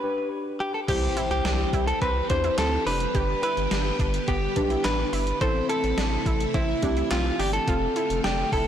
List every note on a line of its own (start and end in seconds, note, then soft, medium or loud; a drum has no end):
0.00 0.77 D4 medium
0.00 0.77 G4 medium
0.00 0.28 B4 medium
0.00 0.77 B4 medium
0.60 0.73 G4 medium
0.74 0.79 A4 medium
0.88 1.08 C2 loud
0.88 3.13 E3 medium
0.88 5.37 G3 medium
0.88 3.13 C4 medium
0.88 1.87 E4 medium
0.88 1.11 G4 medium
0.88 1.30 G4 loud
0.88 5.37 G4 medium
0.88 1.87 G4 medium
0.88 1.87 C5 medium
0.88 kick loud
0.88 closed hi-hat medium
0.88 crash loud
0.88 impact medium
1.17 1.40 E4 medium
1.17 closed hi-hat medium
1.31 1.41 C2 medium
1.31 1.87 G4 loud
1.31 closed hi-hat soft
1.45 1.65 C2 loud
1.45 1.68 D4 medium
1.45 snare loud
1.45 closed hi-hat medium
1.73 1.93 C2 loud
1.73 1.96 E4 medium
1.73 kick medium
1.73 closed hi-hat medium
1.87 2.01 A4 medium
1.87 closed hi-hat medium
2.02 2.21 C2 loud
2.02 2.25 C4 medium
2.02 2.30 B4 loud
2.02 kick medium
2.02 closed hi-hat medium
2.30 2.50 E2 medium
2.30 2.41 D4 medium
2.30 3.04 E4 medium
2.30 3.04 G4 medium
2.30 3.04 C5 medium
2.30 2.56 C5 loud
2.30 kick medium
2.30 closed hi-hat medium
2.44 2.56 E4 medium
2.44 closed hi-hat medium
2.58 2.78 D2 loud
2.58 2.81 C4 medium
2.58 2.85 A4 loud
2.58 snare loud
2.58 clap medium
2.58 closed hi-hat medium
2.86 3.06 F1 loud
2.86 3.09 D4 medium
2.86 3.42 B4 loud
2.86 open hi-hat medium
3.00 closed hi-hat medium
3.15 3.35 G1 loud
3.15 5.39 D3 medium
3.15 5.39 B3 medium
3.15 4.13 D4 medium
3.15 4.13 G4 medium
3.15 3.38 G4 loud
3.15 4.13 B4 medium
3.15 kick loud
3.15 closed hi-hat medium
3.43 3.66 E4 medium
3.43 4.31 B4 loud
3.43 closed hi-hat medium
3.57 3.67 G1 loud
3.57 closed hi-hat soft
3.71 3.91 G1 loud
3.71 3.94 D4 medium
3.71 snare loud
3.71 closed hi-hat medium
3.99 4.19 G1 loud
3.99 4.23 D4 medium
3.99 kick loud
3.99 closed hi-hat medium
4.14 closed hi-hat medium
4.28 4.48 G1 loud
4.28 4.51 B3 medium
4.28 4.86 G4 loud
4.28 kick medium
4.28 closed hi-hat medium
4.56 4.76 B1 loud
4.56 4.68 D4 medium
4.56 5.30 D4 medium
4.56 5.30 G4 medium
4.56 5.30 B4 medium
4.56 kick medium
4.56 closed hi-hat medium
4.70 4.82 E4 medium
4.70 closed hi-hat soft
4.84 5.04 A1 loud
4.84 5.07 D4 medium
4.84 5.41 B4 loud
4.84 snare loud
4.84 clap medium
4.84 closed hi-hat medium
5.13 5.33 G1 loud
5.13 5.36 E4 medium
5.13 open hi-hat medium
5.27 closed hi-hat medium
5.41 5.61 A1 loud
5.41 7.65 C3 medium
5.41 7.65 E3 medium
5.41 7.65 A3 medium
5.41 6.40 C4 medium
5.41 6.40 E4 medium
5.41 7.65 E4 medium
5.41 6.40 A4 medium
5.41 5.64 A4 medium
5.41 5.69 C5 loud
5.41 kick loud
5.41 closed hi-hat medium
5.69 5.92 E4 medium
5.69 6.57 A4 loud
5.69 closed hi-hat medium
5.84 5.94 A1 medium
5.84 closed hi-hat medium
5.98 6.18 A1 loud
5.98 6.21 D4 medium
5.98 snare loud
5.98 closed hi-hat medium
6.26 6.46 A1 loud
6.26 6.49 E4 medium
6.26 kick medium
6.26 closed hi-hat medium
6.40 closed hi-hat medium
6.54 6.74 A1 loud
6.54 6.77 C4 medium
6.54 7.11 E4 medium
6.54 kick medium
6.54 closed hi-hat medium
6.82 7.03 C2 medium
6.82 7.57 C4 medium
6.82 6.94 D4 medium
6.82 7.57 E4 medium
6.82 7.57 G4 medium
6.82 kick medium
6.82 closed hi-hat medium
6.97 7.08 E4 medium
6.97 closed hi-hat soft
7.11 7.31 B1 loud
7.11 7.34 C4 medium
7.11 7.40 F4 medium
7.11 snare loud
7.11 clap medium
7.11 closed hi-hat medium
7.39 7.59 G1 medium
7.39 7.62 D4 medium
7.39 7.52 G4 medium
7.39 open hi-hat medium
7.53 8.20 A4 medium
7.53 closed hi-hat medium
7.68 7.87 F1 loud
7.68 8.68 D3 medium
7.68 8.68 A3 medium
7.68 8.68 C4 medium
7.68 8.66 C4 medium
7.68 8.68 F4 medium
7.68 8.66 F4 medium
7.68 7.91 F4 loud
7.68 8.66 A4 medium
7.68 kick loud
7.68 closed hi-hat medium
7.96 8.19 E4 medium
7.96 closed hi-hat medium
8.10 8.20 F1 medium
8.10 closed hi-hat medium
8.24 8.44 F1 loud
8.24 8.47 D4 medium
8.24 8.50 G4 medium
8.24 snare loud
8.24 closed hi-hat medium
8.52 8.68 F1 loud
8.52 8.68 E4 medium
8.52 8.68 A4 medium
8.52 kick medium
8.52 open hi-hat medium